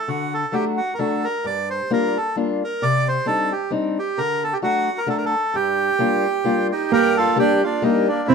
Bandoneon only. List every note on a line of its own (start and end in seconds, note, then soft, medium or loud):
0.08 0.34 F#4 medium
0.34 0.55 A4 medium
0.54 0.65 G4 medium
0.77 0.94 F#4 medium
0.94 1.00 A#4 medium
0.99 1.25 A4 medium
1.24 1.46 A#4 medium
1.46 1.69 D5 medium
1.70 1.92 C5 medium
1.93 2.18 A#4 medium
2.17 2.36 A4 medium
2.64 2.84 A#4 medium
2.83 3.08 D5 medium
3.08 3.27 C5 medium
3.27 3.53 A4 medium
3.52 3.71 G4 medium
3.99 4.19 G4 medium
4.18 4.44 A#4 medium
4.44 4.54 A4 medium
4.53 4.58 G4 medium
4.63 5.00 F#4 medium
4.98 5.09 A#4 medium
5.09 5.17 A4 medium
5.18 5.25 A#4 medium
5.25 5.56 A4 medium
5.55 6.67 G4 medium
6.72 6.91 D#4 medium
6.72 6.92 G4 medium
6.93 7.16 G4 medium
6.93 7.18 A#4 loud
7.17 7.37 F4 medium
7.17 7.38 A4 medium
7.39 7.62 D4 medium
7.39 7.64 G4 loud
7.63 7.83 D4 medium
7.63 7.84 F4 medium
7.83 8.07 A#3 medium
7.83 8.08 D#4 medium
8.08 8.28 A#3 medium
8.08 8.27 D4 medium
8.27 8.35 C4 medium
8.27 8.35 E4 loud